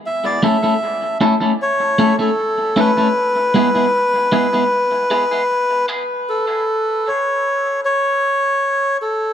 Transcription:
<<
  \new Staff \with { instrumentName = "Melodica" } { \time 4/4 \key e \mixolydian \tempo 4 = 77 e''16 d''16 e''4 r8 cis''8. a'8. b'8~ | b'2.~ b'8 r8 | a'4 cis''4 cis''4. a'8 | }
  \new Staff \with { instrumentName = "Clean electric guitar" } { \time 4/4 \key e \mixolydian r8 <a cis' e' a'>16 <a cis' e' a'>16 r8 <a cis' e' a'>16 <a cis' e' a'>16 r8 <a cis' e' a'>16 <a cis' e' a'>16 r8 <a cis' e' a'>16 <a cis' e' a'>16 | r8 <gis b e' gis'>16 <gis b e' gis'>16 r8 <gis b e' gis'>16 <gis b e' gis'>16 r8 <gis b e' gis'>16 <gis b e' gis'>16 r8 <gis b e' gis'>16 r16 | r1 | }
>>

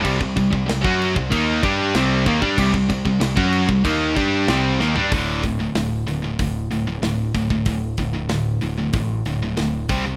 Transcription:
<<
  \new Staff \with { instrumentName = "Overdriven electric guitar" } { \clef bass \time 4/4 \tempo 4 = 94 <c g>16 c16 <c g>16 <c g>16 <c g>16 <fis cis' fis'>8 <c g>16 <ees bes ees'>8 <g d' g'>8 <c g c'>8 <ees bes>16 <g d'>16 | <c g>16 <c g>16 <c g>16 <c g>16 <c g>16 <fis cis' fis'>8 <c g>16 <ees bes ees'>8 <g d' g'>8 <c g c'>8 <ees bes>16 <g d'>16 | r1 | r1 | }
  \new Staff \with { instrumentName = "Distorted electric guitar" } { \clef bass \time 4/4 <c g>16 <c g>16 <c g>16 <c g>16 <c g>16 <fis cis' fis'>8 <c g>16 <ees bes ees'>8 <g d' g'>8 <c g c'>8 <ees bes>16 <g d'>16 | <c g>16 <c g>16 <c g>16 <c g>16 <c g>16 <fis cis' fis'>8 <c g>16 <ees bes ees'>8 <g d' g'>8 <c g c'>8 <ees bes>16 <g d'>16 | <d, a, d>8 <d, a,>16 <d, a,>16 <d, a,>8 <d, a,>16 <d, a,>16 <d, a,>8 <d, a,>16 <d, a,>16 <d, a,>8 <d, a,>16 <d, a,>16 | <d, a,>8 <d, a,>16 <d, a,>16 <d, a,>8 <d, a,>16 <d, a,>16 <d, a,>8 <d, a,>16 <d, a,>16 <d, a,>8 <c g c'>16 <c g>16 | }
  \new Staff \with { instrumentName = "Distorted electric guitar" } { \clef bass \time 4/4 <c g>16 <c g>16 <c g>16 <c g>16 <c g>16 <fis cis' fis'>8 <c g>16 <ees bes ees'>8 <g d' g'>8 <c g c'>8 <ees bes>16 <g d'>16 | <c g>16 <c g>16 <c g>16 <c g>16 <c g>16 <fis cis' fis'>8 <c g>16 <ees bes ees'>8 <g d' g'>8 <c g c'>8 <ees bes>16 <g d'>16 | <d, a, d>8 <d, a,>16 <d, a,>16 <d, a,>8 <d, a,>16 <d, a,>16 <d, a,>8 <d, a,>16 <d, a,>16 <d, a,>8 <d, a,>16 <d, a,>16 | <d, a,>8 <d, a,>16 <d, a,>16 <d, a,>8 <d, a,>16 <d, a,>16 <d, a,>8 <d, a,>16 <d, a,>16 <d, a,>8 <c g c'>16 <c g>16 | }
  \new Staff \with { instrumentName = "Picked electric bass" } { \clef bass \time 4/4 c,16 c,16 c,16 c,16 c,16 fis,8 c,16 ees,8 g,8 c,8 ees,16 g,16 | c,16 c,16 c,16 c,16 c,16 fis,8 c,16 ees,8 g,8 c,8 ees,16 g,16 | d,,4 d,,8 d,,8 d,,8 d,,8 d,,8 d,,8 | d,,8 d,,8 d,,8 d,,8 a,,8 d,,8 d,,8 c,8 | }
  \new DrumStaff \with { instrumentName = "Drums" } \drummode { \time 4/4 <cymc bd>16 bd16 <cymc bd>16 bd16 <cymc sn>16 bd16 cymc16 bd16 <cymc bd>8 <cymc bd>8 <cymc sn>8 <cymc bd>16 bd16 | <cymc bd>16 bd16 <cymc bd>16 bd16 <cymc sn>16 bd16 cymc16 bd16 <cymc bd>8 <cymc bd>8 <cymc sn>8 sn16 tomfh16 | <hho bd>8 <hho bd sn>8 <hho sn>8 hho8 <hho bd>8 hho8 <hho sn>8 <hho bd>16 bd16 | <hho bd>8 <hho bd>8 <hho sn>8 hho8 <hho bd>8 hho8 <hho sn>8 <hho bd>8 | }
>>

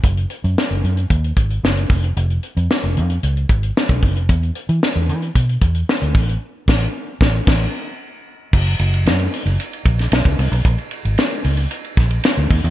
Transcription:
<<
  \new Staff \with { instrumentName = "Fingered electric bass" } { \clef bass \time 4/4 \key gis \dorian \tempo 4 = 113 fis,,8 r16 fis,16 r16 fis,,16 fis,8 dis,8 gis,,8 fis,,8 eis,,8 | eis,,8 r16 eis,16 r16 eis,,16 eis,8 cis,8 gis,,8 r16 b,,16 fis,,16 eis,,16 | e,8 r16 e16 r16 e,16 e8 b,8 e,8 r16 d,16 a,,8 | r8 a,,8 r8 a,,8 a,,8 r4. |
fis,,8 fis,,8 fis,8 r16 fis,,16 r8 ais,,8 b,,16 cis,16 bis,,16 b,,16 | ais,,16 r8 gis,,16 r8 cis,8 r8 ais,,8 r16 d,16 dis,16 e,16 | }
  \new DrumStaff \with { instrumentName = "Drums" } \drummode { \time 4/4 <hh bd>16 hh16 hh16 hh16 sn16 hh16 hh16 hh16 <hh bd>16 hh16 <hh bd>16 hh16 sn16 hh16 <hho bd>16 hh16 | hh16 hh16 hh16 hh16 sn16 hh16 hh16 hh16 hh16 hh16 <hh bd>16 hh16 sn16 <hh bd>16 <hho bd>16 hh16 | <hh bd>16 hh16 hh16 hh16 sn16 hh16 hh16 hh16 <hh bd>16 hh16 <hh bd>16 hh16 sn16 hh16 <hho bd>16 hh16 | r8 <cymc bd sn>8 r8 <bd sn>8 <cymc bd sn>4 r4 |
<cymc bd>16 cymr16 cymr16 cymr16 <cymr sn>16 cymr16 <hho cymr>16 cymr16 <hhp cymr>16 cymr16 <bd cymr>16 <cymr sn>16 <cymr sn>16 <bd cymr>16 <hho cymr>16 cymr16 | <hhp bd cymr>16 cymr16 cymr16 cymr16 <cymr sn>16 cymr16 <hho cymr>16 cymr16 <hhp cymr>16 cymr16 <bd cymr sn>16 cymr16 <cymr sn>16 cymr16 <hho bd cymr>16 cymr16 | }
>>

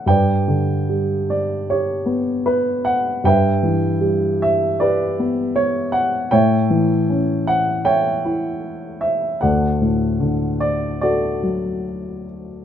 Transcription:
<<
  \new Staff \with { instrumentName = "Grand piano" } { \time 4/4 \key d \major \tempo 4 = 77 << { g''4. d''8 cis''4 b'8 fis''8 | g''4. e''8 d''4 cis''8 fis''8 | g''4. fis''8 g''4. e''8 | fis''4 r8 d''8 d''4. r8 | } \\ { <b' d''>2 g'2 | <b' e''>2 <g' b'>2 | <cis'' e''>2 <cis'' e''>2 | <a' d''>2 <fis' a'>2 | } >> }
  \new Staff \with { instrumentName = "Grand piano" } { \clef bass \time 4/4 \key d \major g,8 d8 g4. b4. | g,8 e8 g4. b4. | a,8 e8 cis'4. e'4. | d,8 a,8 d4. fis4. | }
>>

